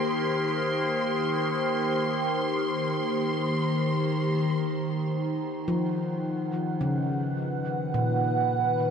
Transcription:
0.00 8.90 D#3 medium
0.00 4.53 A#3 medium
0.00 4.54 G4 medium
0.00 4.53 C5 medium
0.00 4.57 C6 medium
5.12 8.90 F#5 medium
5.68 7.03 F3 medium
6.74 8.90 B4 medium
6.81 8.16 C#3 medium
7.94 8.90 A#2 medium

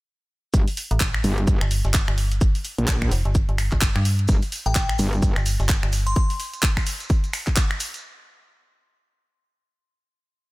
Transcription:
0.54 0.65 G1 loud
0.54 kick loud
0.54 closed hi-hat medium
0.54 shaker medium
0.68 closed hi-hat soft
0.68 open hi-hat medium
0.77 open hi-hat loud
0.77 shaker medium
0.91 1.22 A1 loud
0.91 closed hi-hat medium
1.00 kick loud
1.00 snare loud
1.00 clap loud
1.00 closed hi-hat medium
1.00 shaker medium
1.14 finger snap medium
1.24 1.59 G1 loud
1.24 open hi-hat loud
1.24 shaker medium
1.38 closed hi-hat soft
1.47 kick loud
1.47 closed hi-hat medium
1.47 shaker medium
1.61 1.83 G1 loud
1.61 finger snap medium
1.61 snare soft
1.61 closed hi-hat soft
1.71 open hi-hat loud
1.71 shaker medium
1.85 2.06 G1 medium
1.85 snare medium
1.85 closed hi-hat soft
1.94 kick loud
1.94 snare loud
1.94 clap loud
1.94 closed hi-hat medium
1.94 shaker medium
2.08 2.53 G1 loud
2.08 finger snap medium
2.08 closed hi-hat soft
2.18 open hi-hat medium
2.18 open hi-hat loud
2.32 closed hi-hat medium
2.32 closed hi-hat soft
2.41 kick loud
2.41 closed hi-hat medium
2.41 shaker medium
2.55 open hi-hat medium
2.65 open hi-hat loud
2.65 shaker medium
2.78 3.10 A#1 loud
2.78 closed hi-hat medium
2.87 kick loud
2.87 snare loud
2.87 clap loud
2.87 closed hi-hat medium
2.87 shaker medium
3.02 finger snap medium
3.02 kick medium
3.11 3.23 F1 loud
3.11 open hi-hat loud
3.11 shaker medium
3.25 3.47 G1 loud
3.25 closed hi-hat soft
3.35 kick loud
3.35 closed hi-hat medium
3.35 shaker medium
3.49 3.70 G1 loud
3.49 closed hi-hat soft
3.58 finger snap medium
3.58 open hi-hat loud
3.58 shaker medium
3.72 3.93 G1 medium
3.72 kick medium
3.72 clap soft
3.72 closed hi-hat soft
3.81 kick loud
3.81 snare loud
3.81 clap loud
3.81 closed hi-hat medium
3.81 shaker medium
3.96 4.27 G2 loud
3.96 finger snap medium
3.96 closed hi-hat soft
4.05 open hi-hat loud
4.05 shaker medium
4.19 closed hi-hat medium
4.28 4.40 G1 loud
4.28 kick loud
4.28 closed hi-hat medium
4.28 shekere medium
4.28 shaker medium
4.42 closed hi-hat soft
4.42 open hi-hat medium
4.42 shekere soft
4.52 open hi-hat loud
4.52 shaker medium
4.52 shekere medium
4.66 4.97 A1 medium
4.66 4.72 G5 medium
4.66 closed hi-hat medium
4.66 shekere soft
4.75 4.84 G5 medium
4.75 kick loud
4.75 snare loud
4.75 clap loud
4.75 closed hi-hat medium
4.75 shekere medium
4.75 shaker medium
4.89 finger snap medium
4.89 shekere soft
4.99 5.34 G1 loud
4.99 open hi-hat loud
4.99 shekere loud
4.99 shaker medium
5.13 closed hi-hat soft
5.13 shekere soft
5.22 kick loud
5.22 closed hi-hat medium
5.22 shaker medium
5.22 shekere medium
5.36 5.58 G1 loud
5.36 finger snap medium
5.36 snare soft
5.36 closed hi-hat soft
5.36 shekere soft
5.46 open hi-hat loud
5.46 shekere loud
5.46 shaker medium
5.60 5.81 G1 loud
5.60 snare medium
5.60 closed hi-hat soft
5.60 shekere soft
5.69 kick loud
5.69 snare loud
5.69 clap loud
5.69 closed hi-hat medium
5.69 shekere medium
5.69 shaker medium
5.83 6.15 G1 loud
5.83 finger snap medium
5.83 closed hi-hat soft
5.93 open hi-hat medium
5.93 open hi-hat loud
5.93 shekere loud
6.06 6.13 C6 medium
6.06 closed hi-hat soft
6.06 closed hi-hat medium
6.06 shekere soft
6.15 6.25 C6 medium
6.15 kick loud
6.15 closed hi-hat medium
6.15 shekere soft
6.30 open hi-hat medium
6.30 shekere soft
6.40 open hi-hat loud
6.40 shekere loud
6.53 closed hi-hat medium
6.53 shekere soft
6.63 kick loud
6.63 clap loud
6.63 closed hi-hat medium
6.77 finger snap medium
6.77 kick medium
6.77 shekere soft
6.86 open hi-hat loud
6.86 shekere loud
7.00 closed hi-hat soft
7.00 shekere soft
7.09 kick loud
7.09 closed hi-hat medium
7.09 shekere medium
7.24 closed hi-hat soft
7.24 shekere soft
7.33 finger snap medium
7.33 open hi-hat loud
7.33 shekere loud
7.47 kick medium
7.47 clap soft
7.47 closed hi-hat soft
7.47 shekere soft
7.56 kick loud
7.56 clap loud
7.56 closed hi-hat medium
7.56 shekere medium
7.71 finger snap medium
7.71 closed hi-hat soft
7.80 open hi-hat loud
7.80 shekere loud
7.94 closed hi-hat medium
7.94 shekere soft

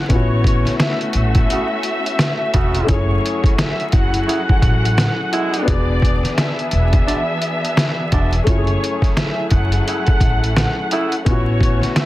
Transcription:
0.00 0.11 G#4 medium
0.08 0.64 A1 loud
0.08 2.86 A3 medium
0.08 2.84 B3 medium
0.08 2.86 C#4 medium
0.08 2.85 C#4 medium
0.08 2.86 F#4 loud
0.08 0.75 C#5 loud
0.08 0.76 C#6 medium
0.08 kick loud
0.08 closed hi-hat loud
0.13 2.87 E4 medium
0.13 2.88 F#4 medium
0.44 kick loud
0.44 closed hi-hat medium
0.65 snare soft
0.65 closed hi-hat medium
0.79 1.11 E5 medium
0.79 1.11 E6 medium
0.79 snare loud
0.79 closed hi-hat medium
1.01 closed hi-hat soft
1.13 1.42 A1 medium
1.13 2.85 E5 loud
1.13 2.85 E6 medium
1.13 closed hi-hat medium
1.35 kick medium
1.35 closed hi-hat medium
1.50 1.67 C#3 medium
1.50 1.67 A3 medium
1.50 1.67 F#4 medium
1.50 closed hi-hat medium
1.83 closed hi-hat medium
2.06 closed hi-hat medium
2.19 snare loud
2.19 closed hi-hat medium
2.54 2.81 E1 medium
2.54 3.01 C#3 loud
2.54 3.01 A3 loud
2.54 3.01 F#4 loud
2.54 kick loud
2.54 closed hi-hat medium
2.75 closed hi-hat medium
2.84 5.61 A3 medium
2.84 5.63 C#4 medium
2.89 3.16 F#1 loud
2.89 5.65 F#3 medium
2.89 5.64 E4 medium
2.89 5.65 E4 medium
2.89 5.65 F#4 medium
2.89 11.22 G#4 medium
2.89 5.65 G#4 medium
2.89 3.54 C#5 loud
2.89 3.55 C#6 medium
2.89 kick loud
2.89 closed hi-hat loud
3.26 closed hi-hat medium
3.44 kick loud
3.44 closed hi-hat medium
3.58 3.90 E5 medium
3.58 3.91 E6 medium
3.58 snare loud
3.58 closed hi-hat medium
3.80 closed hi-hat soft
3.92 4.20 F#1 medium
3.92 5.64 F#5 loud
3.92 5.65 F#6 medium
3.92 kick loud
3.92 closed hi-hat medium
4.14 closed hi-hat medium
4.26 4.42 C#3 medium
4.26 4.42 A3 medium
4.26 4.42 E4 medium
4.26 closed hi-hat medium
4.49 kick medium
4.62 5.06 A1 medium
4.62 kick loud
4.62 closed hi-hat medium
4.85 closed hi-hat medium
4.98 snare loud
4.98 closed hi-hat loud
5.32 5.80 B2 loud
5.32 5.80 G#3 loud
5.32 5.80 E4 loud
5.32 closed hi-hat medium
5.54 closed hi-hat medium
5.62 8.40 B3 medium
5.62 8.41 D4 medium
5.67 6.22 E1 loud
5.67 8.44 E3 medium
5.67 8.44 B3 medium
5.67 8.44 D4 medium
5.67 8.43 F#4 medium
5.67 8.44 G#4 medium
5.67 6.34 D5 loud
5.67 6.34 D6 medium
5.67 kick loud
5.67 closed hi-hat loud
6.02 kick loud
6.02 closed hi-hat medium
6.23 snare soft
6.23 closed hi-hat medium
6.37 6.68 E5 medium
6.37 6.69 E6 medium
6.37 snare loud
6.37 closed hi-hat medium
6.59 closed hi-hat soft
6.71 7.00 E1 loud
6.71 8.42 E5 loud
6.71 8.42 E6 medium
6.71 closed hi-hat medium
6.93 kick medium
6.93 closed hi-hat medium
7.07 7.23 B2 medium
7.07 7.23 G#3 medium
7.07 7.23 D4 loud
7.07 closed hi-hat medium
7.42 closed hi-hat medium
7.65 closed hi-hat medium
7.77 snare loud
7.77 closed hi-hat loud
8.12 8.39 E1 medium
8.12 8.34 B2 loud
8.12 8.34 G#3 loud
8.12 8.34 D4 loud
8.12 kick loud
8.12 closed hi-hat medium
8.33 closed hi-hat medium
8.44 8.74 F#1 loud
8.44 11.23 F#3 medium
8.44 11.21 A3 medium
8.44 11.23 A3 loud
8.44 11.22 C#4 medium
8.44 11.23 E4 medium
8.44 9.12 C#5 loud
8.44 9.13 C#6 medium
8.44 kick loud
8.44 closed hi-hat loud
8.49 11.23 E4 medium
8.49 8.57 F#4 medium
8.57 11.27 G#4 medium
8.67 closed hi-hat soft
8.84 closed hi-hat medium
9.02 kick loud
9.02 snare soft
9.02 closed hi-hat medium
9.17 9.48 E5 medium
9.17 9.49 E6 medium
9.17 snare loud
9.17 closed hi-hat medium
9.50 9.79 F#1 medium
9.50 11.22 F#5 loud
9.50 11.22 F#6 medium
9.50 kick medium
9.50 closed hi-hat medium
9.72 closed hi-hat medium
9.87 10.03 C#3 medium
9.87 10.03 A3 medium
9.87 10.03 E4 medium
9.87 closed hi-hat medium
10.07 kick medium
10.07 closed hi-hat soft
10.21 10.64 A1 medium
10.21 kick loud
10.21 closed hi-hat medium
10.44 closed hi-hat medium
10.57 snare loud
10.57 closed hi-hat medium
10.91 11.14 C#3 loud
10.91 11.14 A3 loud
10.91 11.14 E4 loud
10.91 closed hi-hat medium
11.12 closed hi-hat medium
11.25 11.80 A1 loud
11.25 12.05 A3 medium
11.25 12.05 B3 medium
11.25 12.05 C#4 medium
11.25 12.05 F#4 loud
11.25 11.92 C#5 loud
11.25 11.92 C#6 medium
11.25 kick loud
11.25 closed hi-hat loud
11.29 12.05 E4 medium
11.29 12.05 F#4 medium
11.61 kick loud
11.61 closed hi-hat medium
11.82 snare soft
11.82 closed hi-hat medium
11.96 12.05 E5 medium
11.96 12.05 E6 medium
11.96 snare loud
11.96 closed hi-hat medium

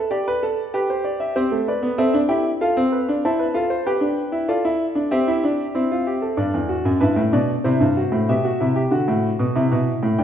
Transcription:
0.11 0.26 G4 medium
0.11 0.72 D5 medium
0.28 0.42 B4 medium
0.43 0.62 A4 medium
0.74 1.34 G4 medium
0.74 0.89 B4 medium
0.90 1.05 C5 medium
1.04 1.20 D5 medium
1.20 1.35 E5 medium
1.36 1.51 C4 medium
1.36 1.55 G4 medium
1.36 1.55 C5 medium
1.52 1.71 A3 medium
1.68 1.87 B4 medium
1.68 1.87 D5 medium
1.83 1.98 B3 medium
1.98 2.14 C4 medium
1.98 2.18 A4 medium
1.98 2.18 E5 medium
2.14 2.29 D4 medium
2.29 2.48 E4 medium
2.29 2.48 G4 medium
2.29 2.48 G5 medium
2.61 2.76 F4 medium
2.61 2.81 A4 medium
2.61 3.22 F5 medium
2.77 2.96 C4 medium
2.92 3.12 B4 medium
3.09 3.23 D4 medium
3.25 3.44 E4 medium
3.25 3.39 C5 medium
3.25 3.85 A5 medium
3.39 3.54 B4 medium
3.54 3.74 F4 medium
3.54 3.70 A4 medium
3.70 3.85 C5 medium
3.86 4.02 G4 medium
3.86 4.47 B4 medium
3.86 4.47 G5 medium
4.01 4.20 D4 medium
4.32 4.48 E4 medium
4.48 4.64 F4 medium
4.48 5.09 A4 medium
4.48 5.09 D5 medium
4.65 4.84 E4 medium
4.95 5.11 D4 medium
5.11 5.27 C4 medium
5.11 5.72 G4 medium
5.11 6.34 E5 medium
5.28 5.43 E4 medium
5.44 5.63 D4 medium
5.75 6.36 C4 medium
5.75 5.90 E4 medium
5.92 6.06 F4 medium
6.07 6.22 G4 medium
6.22 6.37 A4 medium
6.37 6.53 G2 medium
6.37 6.57 D4 medium
6.37 6.99 D5 medium
6.54 6.73 E2 medium
6.69 6.89 F#4 medium
6.85 7.00 F#2 medium
7.00 7.16 G2 medium
7.00 7.20 E4 medium
7.00 7.20 B4 medium
7.16 7.32 A2 medium
7.33 7.53 B2 medium
7.33 7.52 D4 medium
7.33 7.52 D5 medium
7.64 7.80 C3 medium
7.64 7.84 E4 medium
7.64 8.26 C5 medium
7.80 8.00 G2 medium
7.97 8.16 F#4 medium
8.12 8.27 A2 medium
8.29 8.49 B2 medium
8.29 8.44 G4 medium
8.29 8.90 E5 medium
8.45 8.60 F#4 medium
8.60 8.80 C3 medium
8.60 8.75 E4 medium
8.76 8.91 G4 medium
8.91 9.07 D3 medium
8.91 9.53 F#4 medium
8.91 10.15 F#5 medium
9.08 9.28 A2 medium
9.39 9.55 B2 medium
9.55 9.71 C3 medium
9.55 10.17 E4 medium
9.72 9.91 B2 medium
10.03 10.18 A2 medium
10.18 10.24 G2 medium
10.18 10.24 D4 medium
10.18 10.24 G5 medium

